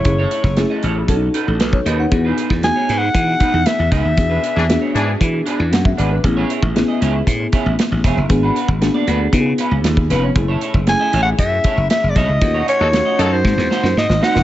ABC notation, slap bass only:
X:1
M:4/4
L:1/16
Q:1/4=116
K:E
V:1 name="Slap bass" clef=bass
F,,,2 z F,,,2 z A,,,2 B,,,2 z A,,, B,,,2 D,,2 | E,,2 z E,,2 z G,,2 E,2 z E,, z E,, C,, D,, | E,,2 z E,,2 z G,,2 E,2 z E,, F,,2 G,,,2 | A,,,2 z A,,,2 z C,,2 A,,2 z A,,, z A,,, E,,, F,,, |
G,,,2 z G,,,2 z =D,,2 C,2 z C,, ^D,,2 ^E,,,2 | F,,,2 z F,,,2 z A,,,2 F,,2 z F,,, z F,,, B,,, C,, | D,,2 z D,,2 z F,,2 G,, E,, z F,, G,, G,,, z E,,, |]